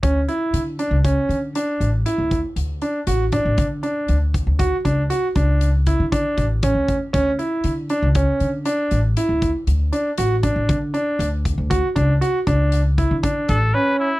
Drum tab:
HH |xxxxxxxxxxxxxx|xxxxxxxxxxxxxx|xxxxxxxxxxxxxx|xxxxxxxxxxxx--|
BD |o---o----o---o|o--ooo-o-ooooo|o---o----o---o|o--ooo-o-ooo--|